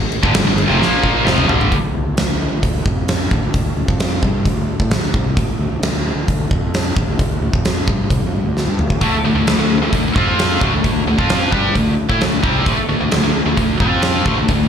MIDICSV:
0, 0, Header, 1, 6, 480
1, 0, Start_track
1, 0, Tempo, 455927
1, 1809, Time_signature, 4, 2, 24, 8
1, 15458, End_track
2, 0, Start_track
2, 0, Title_t, "Distorted electric guitar"
2, 0, Program_c, 0, 30
2, 244, Note_on_c, 0, 43, 82
2, 251, Note_on_c, 0, 50, 94
2, 353, Note_off_c, 0, 43, 0
2, 358, Note_off_c, 0, 50, 0
2, 366, Note_on_c, 0, 43, 66
2, 371, Note_on_c, 0, 50, 75
2, 480, Note_off_c, 0, 43, 0
2, 482, Note_off_c, 0, 50, 0
2, 493, Note_on_c, 0, 43, 67
2, 494, Note_on_c, 0, 50, 76
2, 683, Note_off_c, 0, 43, 0
2, 683, Note_off_c, 0, 50, 0
2, 712, Note_on_c, 0, 41, 89
2, 728, Note_on_c, 0, 48, 94
2, 829, Note_off_c, 0, 48, 0
2, 833, Note_off_c, 0, 41, 0
2, 833, Note_on_c, 0, 46, 88
2, 842, Note_on_c, 0, 53, 85
2, 848, Note_on_c, 0, 58, 97
2, 1309, Note_on_c, 0, 41, 86
2, 1314, Note_off_c, 0, 46, 0
2, 1316, Note_off_c, 0, 53, 0
2, 1321, Note_off_c, 0, 58, 0
2, 1323, Note_on_c, 0, 48, 90
2, 1328, Note_on_c, 0, 53, 100
2, 1551, Note_off_c, 0, 41, 0
2, 1555, Note_on_c, 0, 43, 86
2, 1559, Note_off_c, 0, 48, 0
2, 1562, Note_off_c, 0, 53, 0
2, 1563, Note_on_c, 0, 50, 85
2, 1571, Note_on_c, 0, 55, 93
2, 1795, Note_off_c, 0, 43, 0
2, 1799, Note_off_c, 0, 50, 0
2, 1803, Note_off_c, 0, 55, 0
2, 9491, Note_on_c, 0, 50, 89
2, 9498, Note_on_c, 0, 57, 90
2, 9603, Note_off_c, 0, 50, 0
2, 9609, Note_off_c, 0, 57, 0
2, 9738, Note_on_c, 0, 50, 59
2, 9741, Note_on_c, 0, 57, 62
2, 9832, Note_off_c, 0, 50, 0
2, 9839, Note_off_c, 0, 57, 0
2, 9845, Note_on_c, 0, 50, 60
2, 9852, Note_on_c, 0, 57, 60
2, 9964, Note_off_c, 0, 57, 0
2, 9965, Note_off_c, 0, 50, 0
2, 9977, Note_on_c, 0, 57, 68
2, 9978, Note_on_c, 0, 50, 57
2, 10081, Note_off_c, 0, 50, 0
2, 10090, Note_off_c, 0, 57, 0
2, 10093, Note_on_c, 0, 50, 61
2, 10102, Note_on_c, 0, 57, 64
2, 10286, Note_off_c, 0, 50, 0
2, 10290, Note_off_c, 0, 57, 0
2, 10340, Note_on_c, 0, 50, 55
2, 10345, Note_on_c, 0, 57, 64
2, 10446, Note_off_c, 0, 50, 0
2, 10449, Note_off_c, 0, 57, 0
2, 10459, Note_on_c, 0, 50, 57
2, 10461, Note_on_c, 0, 57, 66
2, 10649, Note_off_c, 0, 50, 0
2, 10650, Note_off_c, 0, 57, 0
2, 10699, Note_on_c, 0, 53, 85
2, 10710, Note_on_c, 0, 60, 87
2, 10713, Note_on_c, 0, 65, 85
2, 11169, Note_off_c, 0, 53, 0
2, 11175, Note_off_c, 0, 60, 0
2, 11175, Note_on_c, 0, 50, 88
2, 11176, Note_off_c, 0, 65, 0
2, 11181, Note_on_c, 0, 57, 94
2, 11287, Note_off_c, 0, 50, 0
2, 11290, Note_off_c, 0, 57, 0
2, 11305, Note_on_c, 0, 50, 54
2, 11305, Note_on_c, 0, 57, 59
2, 11405, Note_off_c, 0, 50, 0
2, 11415, Note_off_c, 0, 57, 0
2, 11418, Note_on_c, 0, 50, 60
2, 11427, Note_on_c, 0, 57, 68
2, 11608, Note_off_c, 0, 50, 0
2, 11613, Note_off_c, 0, 57, 0
2, 11658, Note_on_c, 0, 50, 60
2, 11662, Note_on_c, 0, 57, 62
2, 11766, Note_off_c, 0, 50, 0
2, 11770, Note_on_c, 0, 53, 82
2, 11776, Note_off_c, 0, 57, 0
2, 11780, Note_on_c, 0, 60, 85
2, 11785, Note_on_c, 0, 65, 80
2, 12121, Note_off_c, 0, 60, 0
2, 12125, Note_off_c, 0, 53, 0
2, 12125, Note_on_c, 0, 55, 85
2, 12129, Note_off_c, 0, 65, 0
2, 12133, Note_on_c, 0, 62, 89
2, 12146, Note_on_c, 0, 67, 96
2, 12362, Note_off_c, 0, 55, 0
2, 12366, Note_off_c, 0, 62, 0
2, 12367, Note_on_c, 0, 50, 60
2, 12370, Note_on_c, 0, 57, 68
2, 12372, Note_off_c, 0, 67, 0
2, 12562, Note_off_c, 0, 50, 0
2, 12564, Note_off_c, 0, 57, 0
2, 12734, Note_on_c, 0, 57, 77
2, 12741, Note_on_c, 0, 64, 92
2, 12846, Note_off_c, 0, 57, 0
2, 12850, Note_off_c, 0, 64, 0
2, 12857, Note_on_c, 0, 50, 58
2, 12868, Note_on_c, 0, 57, 74
2, 13047, Note_off_c, 0, 50, 0
2, 13052, Note_off_c, 0, 57, 0
2, 13081, Note_on_c, 0, 48, 89
2, 13089, Note_on_c, 0, 55, 88
2, 13095, Note_on_c, 0, 60, 106
2, 13320, Note_off_c, 0, 48, 0
2, 13324, Note_off_c, 0, 55, 0
2, 13327, Note_off_c, 0, 60, 0
2, 13327, Note_on_c, 0, 50, 88
2, 13338, Note_on_c, 0, 57, 96
2, 13433, Note_off_c, 0, 50, 0
2, 13448, Note_off_c, 0, 57, 0
2, 13570, Note_on_c, 0, 50, 59
2, 13575, Note_on_c, 0, 57, 70
2, 13680, Note_off_c, 0, 50, 0
2, 13686, Note_off_c, 0, 57, 0
2, 13693, Note_on_c, 0, 50, 58
2, 13699, Note_on_c, 0, 57, 72
2, 13796, Note_off_c, 0, 50, 0
2, 13804, Note_off_c, 0, 57, 0
2, 13808, Note_on_c, 0, 50, 69
2, 13817, Note_on_c, 0, 57, 73
2, 13921, Note_off_c, 0, 50, 0
2, 13922, Note_off_c, 0, 57, 0
2, 13934, Note_on_c, 0, 50, 58
2, 13935, Note_on_c, 0, 57, 70
2, 14125, Note_off_c, 0, 50, 0
2, 14125, Note_off_c, 0, 57, 0
2, 14175, Note_on_c, 0, 50, 61
2, 14178, Note_on_c, 0, 57, 71
2, 14281, Note_off_c, 0, 50, 0
2, 14286, Note_off_c, 0, 57, 0
2, 14294, Note_on_c, 0, 50, 64
2, 14299, Note_on_c, 0, 57, 70
2, 14485, Note_off_c, 0, 50, 0
2, 14488, Note_off_c, 0, 57, 0
2, 14534, Note_on_c, 0, 53, 81
2, 14537, Note_on_c, 0, 60, 93
2, 14546, Note_on_c, 0, 65, 91
2, 15005, Note_off_c, 0, 53, 0
2, 15007, Note_off_c, 0, 60, 0
2, 15009, Note_on_c, 0, 50, 81
2, 15011, Note_off_c, 0, 65, 0
2, 15019, Note_on_c, 0, 57, 93
2, 15123, Note_off_c, 0, 50, 0
2, 15128, Note_off_c, 0, 57, 0
2, 15140, Note_on_c, 0, 50, 56
2, 15141, Note_on_c, 0, 57, 62
2, 15250, Note_off_c, 0, 50, 0
2, 15257, Note_off_c, 0, 57, 0
2, 15263, Note_on_c, 0, 50, 66
2, 15272, Note_on_c, 0, 57, 67
2, 15449, Note_off_c, 0, 50, 0
2, 15454, Note_off_c, 0, 57, 0
2, 15458, End_track
3, 0, Start_track
3, 0, Title_t, "Fingered electric bass"
3, 0, Program_c, 1, 33
3, 247, Note_on_c, 1, 31, 89
3, 359, Note_off_c, 1, 31, 0
3, 368, Note_on_c, 1, 31, 77
3, 479, Note_off_c, 1, 31, 0
3, 490, Note_on_c, 1, 31, 82
3, 712, Note_off_c, 1, 31, 0
3, 721, Note_on_c, 1, 29, 96
3, 836, Note_off_c, 1, 29, 0
3, 844, Note_on_c, 1, 34, 85
3, 1293, Note_off_c, 1, 34, 0
3, 1313, Note_on_c, 1, 29, 94
3, 1544, Note_off_c, 1, 29, 0
3, 1562, Note_on_c, 1, 31, 83
3, 1789, Note_off_c, 1, 31, 0
3, 1804, Note_on_c, 1, 38, 82
3, 1918, Note_off_c, 1, 38, 0
3, 2044, Note_on_c, 1, 38, 73
3, 2158, Note_off_c, 1, 38, 0
3, 2163, Note_on_c, 1, 38, 66
3, 2278, Note_off_c, 1, 38, 0
3, 2283, Note_on_c, 1, 38, 71
3, 2398, Note_off_c, 1, 38, 0
3, 2403, Note_on_c, 1, 38, 66
3, 2630, Note_off_c, 1, 38, 0
3, 2655, Note_on_c, 1, 38, 74
3, 2764, Note_off_c, 1, 38, 0
3, 2770, Note_on_c, 1, 38, 72
3, 2994, Note_off_c, 1, 38, 0
3, 3004, Note_on_c, 1, 41, 85
3, 3455, Note_off_c, 1, 41, 0
3, 3490, Note_on_c, 1, 38, 87
3, 3603, Note_off_c, 1, 38, 0
3, 3612, Note_on_c, 1, 38, 70
3, 3724, Note_off_c, 1, 38, 0
3, 3728, Note_on_c, 1, 38, 72
3, 3950, Note_off_c, 1, 38, 0
3, 3956, Note_on_c, 1, 38, 74
3, 4076, Note_off_c, 1, 38, 0
3, 4086, Note_on_c, 1, 41, 83
3, 4424, Note_off_c, 1, 41, 0
3, 4452, Note_on_c, 1, 43, 90
3, 4676, Note_off_c, 1, 43, 0
3, 4689, Note_on_c, 1, 38, 72
3, 4915, Note_off_c, 1, 38, 0
3, 5055, Note_on_c, 1, 45, 81
3, 5156, Note_off_c, 1, 45, 0
3, 5163, Note_on_c, 1, 38, 70
3, 5391, Note_off_c, 1, 38, 0
3, 5413, Note_on_c, 1, 36, 80
3, 5637, Note_off_c, 1, 36, 0
3, 5652, Note_on_c, 1, 38, 80
3, 5765, Note_off_c, 1, 38, 0
3, 5888, Note_on_c, 1, 38, 81
3, 6003, Note_off_c, 1, 38, 0
3, 6012, Note_on_c, 1, 38, 66
3, 6120, Note_off_c, 1, 38, 0
3, 6127, Note_on_c, 1, 38, 76
3, 6234, Note_off_c, 1, 38, 0
3, 6240, Note_on_c, 1, 38, 68
3, 6471, Note_off_c, 1, 38, 0
3, 6477, Note_on_c, 1, 38, 75
3, 6597, Note_off_c, 1, 38, 0
3, 6613, Note_on_c, 1, 38, 73
3, 6837, Note_off_c, 1, 38, 0
3, 6853, Note_on_c, 1, 41, 83
3, 7301, Note_off_c, 1, 41, 0
3, 7328, Note_on_c, 1, 38, 82
3, 7443, Note_off_c, 1, 38, 0
3, 7449, Note_on_c, 1, 38, 72
3, 7564, Note_off_c, 1, 38, 0
3, 7572, Note_on_c, 1, 38, 74
3, 7797, Note_off_c, 1, 38, 0
3, 7805, Note_on_c, 1, 38, 77
3, 7921, Note_off_c, 1, 38, 0
3, 7932, Note_on_c, 1, 41, 75
3, 8269, Note_off_c, 1, 41, 0
3, 8286, Note_on_c, 1, 43, 84
3, 8514, Note_off_c, 1, 43, 0
3, 8528, Note_on_c, 1, 36, 85
3, 8639, Note_off_c, 1, 36, 0
3, 8645, Note_on_c, 1, 41, 83
3, 8762, Note_off_c, 1, 41, 0
3, 8768, Note_on_c, 1, 43, 83
3, 8874, Note_off_c, 1, 43, 0
3, 8880, Note_on_c, 1, 38, 84
3, 9110, Note_off_c, 1, 38, 0
3, 9131, Note_on_c, 1, 43, 83
3, 9244, Note_off_c, 1, 43, 0
3, 9249, Note_on_c, 1, 38, 76
3, 9475, Note_off_c, 1, 38, 0
3, 9488, Note_on_c, 1, 38, 83
3, 9596, Note_off_c, 1, 38, 0
3, 9725, Note_on_c, 1, 38, 73
3, 9838, Note_off_c, 1, 38, 0
3, 9844, Note_on_c, 1, 38, 69
3, 9956, Note_off_c, 1, 38, 0
3, 9962, Note_on_c, 1, 38, 71
3, 10080, Note_off_c, 1, 38, 0
3, 10087, Note_on_c, 1, 38, 74
3, 10314, Note_off_c, 1, 38, 0
3, 10322, Note_on_c, 1, 38, 73
3, 10439, Note_off_c, 1, 38, 0
3, 10449, Note_on_c, 1, 38, 73
3, 10675, Note_off_c, 1, 38, 0
3, 10692, Note_on_c, 1, 41, 76
3, 11139, Note_off_c, 1, 41, 0
3, 11175, Note_on_c, 1, 38, 82
3, 11286, Note_off_c, 1, 38, 0
3, 11293, Note_on_c, 1, 38, 74
3, 11405, Note_off_c, 1, 38, 0
3, 11415, Note_on_c, 1, 38, 72
3, 11638, Note_off_c, 1, 38, 0
3, 11646, Note_on_c, 1, 38, 76
3, 11761, Note_off_c, 1, 38, 0
3, 11776, Note_on_c, 1, 41, 78
3, 12110, Note_off_c, 1, 41, 0
3, 12133, Note_on_c, 1, 43, 92
3, 12357, Note_off_c, 1, 43, 0
3, 12374, Note_on_c, 1, 38, 71
3, 12597, Note_off_c, 1, 38, 0
3, 12731, Note_on_c, 1, 45, 88
3, 12844, Note_off_c, 1, 45, 0
3, 12850, Note_on_c, 1, 38, 70
3, 13074, Note_off_c, 1, 38, 0
3, 13093, Note_on_c, 1, 36, 90
3, 13316, Note_off_c, 1, 36, 0
3, 13330, Note_on_c, 1, 38, 82
3, 13443, Note_off_c, 1, 38, 0
3, 13572, Note_on_c, 1, 38, 80
3, 13684, Note_off_c, 1, 38, 0
3, 13694, Note_on_c, 1, 38, 71
3, 13805, Note_off_c, 1, 38, 0
3, 13814, Note_on_c, 1, 38, 76
3, 13925, Note_off_c, 1, 38, 0
3, 13935, Note_on_c, 1, 38, 69
3, 14157, Note_off_c, 1, 38, 0
3, 14163, Note_on_c, 1, 38, 80
3, 14279, Note_off_c, 1, 38, 0
3, 14290, Note_on_c, 1, 38, 75
3, 14514, Note_off_c, 1, 38, 0
3, 14527, Note_on_c, 1, 41, 81
3, 14975, Note_off_c, 1, 41, 0
3, 15009, Note_on_c, 1, 38, 79
3, 15122, Note_off_c, 1, 38, 0
3, 15132, Note_on_c, 1, 38, 71
3, 15244, Note_off_c, 1, 38, 0
3, 15253, Note_on_c, 1, 38, 70
3, 15458, Note_off_c, 1, 38, 0
3, 15458, End_track
4, 0, Start_track
4, 0, Title_t, "Muted distorted electric guitar strokes"
4, 9616, Note_on_c, 9, 29, 47
4, 9721, Note_off_c, 9, 29, 0
4, 13446, Note_on_c, 9, 29, 52
4, 13551, Note_off_c, 9, 29, 0
4, 15458, End_track
5, 0, Start_track
5, 0, Title_t, "Muted fingered electric bass strokes"
5, 1938, Note_on_c, 9, 29, 34
5, 2043, Note_off_c, 9, 29, 0
5, 5772, Note_on_c, 9, 29, 33
5, 5878, Note_off_c, 9, 29, 0
5, 9602, Note_on_c, 9, 29, 34
5, 9707, Note_off_c, 9, 29, 0
5, 13456, Note_on_c, 9, 29, 38
5, 13561, Note_off_c, 9, 29, 0
5, 15458, End_track
6, 0, Start_track
6, 0, Title_t, "Drums"
6, 124, Note_on_c, 9, 49, 61
6, 229, Note_off_c, 9, 49, 0
6, 246, Note_on_c, 9, 36, 104
6, 351, Note_off_c, 9, 36, 0
6, 361, Note_on_c, 9, 49, 87
6, 367, Note_on_c, 9, 38, 114
6, 466, Note_off_c, 9, 49, 0
6, 472, Note_off_c, 9, 38, 0
6, 496, Note_on_c, 9, 38, 31
6, 602, Note_off_c, 9, 38, 0
6, 610, Note_on_c, 9, 49, 61
6, 715, Note_off_c, 9, 49, 0
6, 863, Note_on_c, 9, 38, 62
6, 968, Note_off_c, 9, 38, 0
6, 1090, Note_on_c, 9, 36, 77
6, 1195, Note_off_c, 9, 36, 0
6, 1334, Note_on_c, 9, 38, 84
6, 1440, Note_off_c, 9, 38, 0
6, 1451, Note_on_c, 9, 45, 86
6, 1556, Note_off_c, 9, 45, 0
6, 1572, Note_on_c, 9, 43, 101
6, 1677, Note_off_c, 9, 43, 0
6, 1696, Note_on_c, 9, 43, 86
6, 1801, Note_off_c, 9, 43, 0
6, 1809, Note_on_c, 9, 36, 94
6, 1812, Note_on_c, 9, 46, 49
6, 1915, Note_off_c, 9, 36, 0
6, 1917, Note_off_c, 9, 46, 0
6, 2288, Note_on_c, 9, 46, 51
6, 2294, Note_on_c, 9, 38, 102
6, 2393, Note_off_c, 9, 46, 0
6, 2399, Note_off_c, 9, 38, 0
6, 2769, Note_on_c, 9, 36, 84
6, 2770, Note_on_c, 9, 46, 52
6, 2874, Note_off_c, 9, 36, 0
6, 2876, Note_off_c, 9, 46, 0
6, 3008, Note_on_c, 9, 36, 103
6, 3113, Note_off_c, 9, 36, 0
6, 3246, Note_on_c, 9, 46, 53
6, 3253, Note_on_c, 9, 38, 93
6, 3352, Note_off_c, 9, 46, 0
6, 3358, Note_off_c, 9, 38, 0
6, 3488, Note_on_c, 9, 36, 97
6, 3593, Note_off_c, 9, 36, 0
6, 3725, Note_on_c, 9, 46, 49
6, 3728, Note_on_c, 9, 36, 82
6, 3830, Note_off_c, 9, 46, 0
6, 3833, Note_off_c, 9, 36, 0
6, 4089, Note_on_c, 9, 36, 87
6, 4194, Note_off_c, 9, 36, 0
6, 4210, Note_on_c, 9, 46, 49
6, 4216, Note_on_c, 9, 38, 101
6, 4315, Note_off_c, 9, 46, 0
6, 4322, Note_off_c, 9, 38, 0
6, 4450, Note_on_c, 9, 36, 97
6, 4556, Note_off_c, 9, 36, 0
6, 4690, Note_on_c, 9, 36, 78
6, 4691, Note_on_c, 9, 46, 48
6, 4795, Note_off_c, 9, 36, 0
6, 4796, Note_off_c, 9, 46, 0
6, 5051, Note_on_c, 9, 36, 93
6, 5157, Note_off_c, 9, 36, 0
6, 5168, Note_on_c, 9, 46, 44
6, 5174, Note_on_c, 9, 38, 97
6, 5273, Note_off_c, 9, 46, 0
6, 5279, Note_off_c, 9, 38, 0
6, 5298, Note_on_c, 9, 38, 31
6, 5403, Note_off_c, 9, 38, 0
6, 5412, Note_on_c, 9, 36, 92
6, 5517, Note_off_c, 9, 36, 0
6, 5653, Note_on_c, 9, 36, 99
6, 5655, Note_on_c, 9, 46, 45
6, 5758, Note_off_c, 9, 36, 0
6, 5761, Note_off_c, 9, 46, 0
6, 6136, Note_on_c, 9, 46, 47
6, 6142, Note_on_c, 9, 38, 104
6, 6241, Note_off_c, 9, 46, 0
6, 6247, Note_off_c, 9, 38, 0
6, 6615, Note_on_c, 9, 36, 85
6, 6615, Note_on_c, 9, 46, 51
6, 6720, Note_off_c, 9, 36, 0
6, 6720, Note_off_c, 9, 46, 0
6, 6854, Note_on_c, 9, 36, 99
6, 6959, Note_off_c, 9, 36, 0
6, 7098, Note_on_c, 9, 46, 52
6, 7104, Note_on_c, 9, 38, 95
6, 7203, Note_off_c, 9, 46, 0
6, 7209, Note_off_c, 9, 38, 0
6, 7333, Note_on_c, 9, 36, 104
6, 7438, Note_off_c, 9, 36, 0
6, 7572, Note_on_c, 9, 36, 87
6, 7575, Note_on_c, 9, 46, 51
6, 7678, Note_off_c, 9, 36, 0
6, 7680, Note_off_c, 9, 46, 0
6, 7932, Note_on_c, 9, 36, 99
6, 8038, Note_off_c, 9, 36, 0
6, 8053, Note_on_c, 9, 46, 53
6, 8060, Note_on_c, 9, 38, 100
6, 8159, Note_off_c, 9, 46, 0
6, 8165, Note_off_c, 9, 38, 0
6, 8292, Note_on_c, 9, 36, 106
6, 8398, Note_off_c, 9, 36, 0
6, 8532, Note_on_c, 9, 36, 92
6, 8540, Note_on_c, 9, 46, 51
6, 8637, Note_off_c, 9, 36, 0
6, 8645, Note_off_c, 9, 46, 0
6, 9020, Note_on_c, 9, 38, 49
6, 9126, Note_off_c, 9, 38, 0
6, 9254, Note_on_c, 9, 45, 79
6, 9359, Note_off_c, 9, 45, 0
6, 9372, Note_on_c, 9, 36, 79
6, 9477, Note_off_c, 9, 36, 0
6, 9489, Note_on_c, 9, 46, 49
6, 9490, Note_on_c, 9, 36, 88
6, 9594, Note_off_c, 9, 46, 0
6, 9595, Note_off_c, 9, 36, 0
6, 9973, Note_on_c, 9, 46, 47
6, 9979, Note_on_c, 9, 38, 103
6, 10078, Note_off_c, 9, 46, 0
6, 10084, Note_off_c, 9, 38, 0
6, 10451, Note_on_c, 9, 46, 47
6, 10452, Note_on_c, 9, 36, 78
6, 10557, Note_off_c, 9, 36, 0
6, 10557, Note_off_c, 9, 46, 0
6, 10694, Note_on_c, 9, 36, 104
6, 10800, Note_off_c, 9, 36, 0
6, 10941, Note_on_c, 9, 46, 52
6, 10947, Note_on_c, 9, 38, 105
6, 11046, Note_off_c, 9, 46, 0
6, 11052, Note_off_c, 9, 38, 0
6, 11175, Note_on_c, 9, 36, 108
6, 11280, Note_off_c, 9, 36, 0
6, 11415, Note_on_c, 9, 36, 91
6, 11418, Note_on_c, 9, 46, 53
6, 11520, Note_off_c, 9, 36, 0
6, 11523, Note_off_c, 9, 46, 0
6, 11776, Note_on_c, 9, 36, 96
6, 11882, Note_off_c, 9, 36, 0
6, 11892, Note_on_c, 9, 46, 51
6, 11899, Note_on_c, 9, 38, 106
6, 11998, Note_off_c, 9, 46, 0
6, 12004, Note_off_c, 9, 38, 0
6, 12133, Note_on_c, 9, 36, 94
6, 12239, Note_off_c, 9, 36, 0
6, 12375, Note_on_c, 9, 36, 79
6, 12378, Note_on_c, 9, 46, 53
6, 12480, Note_off_c, 9, 36, 0
6, 12484, Note_off_c, 9, 46, 0
6, 12734, Note_on_c, 9, 36, 96
6, 12839, Note_off_c, 9, 36, 0
6, 12856, Note_on_c, 9, 46, 48
6, 12862, Note_on_c, 9, 38, 98
6, 12961, Note_off_c, 9, 46, 0
6, 12967, Note_off_c, 9, 38, 0
6, 13092, Note_on_c, 9, 36, 101
6, 13198, Note_off_c, 9, 36, 0
6, 13331, Note_on_c, 9, 46, 52
6, 13332, Note_on_c, 9, 36, 99
6, 13436, Note_off_c, 9, 46, 0
6, 13438, Note_off_c, 9, 36, 0
6, 13808, Note_on_c, 9, 46, 50
6, 13814, Note_on_c, 9, 38, 103
6, 13913, Note_off_c, 9, 46, 0
6, 13920, Note_off_c, 9, 38, 0
6, 14290, Note_on_c, 9, 46, 51
6, 14291, Note_on_c, 9, 36, 81
6, 14396, Note_off_c, 9, 36, 0
6, 14396, Note_off_c, 9, 46, 0
6, 14531, Note_on_c, 9, 36, 104
6, 14636, Note_off_c, 9, 36, 0
6, 14764, Note_on_c, 9, 46, 51
6, 14770, Note_on_c, 9, 38, 98
6, 14869, Note_off_c, 9, 46, 0
6, 14876, Note_off_c, 9, 38, 0
6, 15010, Note_on_c, 9, 36, 107
6, 15116, Note_off_c, 9, 36, 0
6, 15249, Note_on_c, 9, 46, 54
6, 15252, Note_on_c, 9, 36, 89
6, 15354, Note_off_c, 9, 46, 0
6, 15357, Note_off_c, 9, 36, 0
6, 15458, End_track
0, 0, End_of_file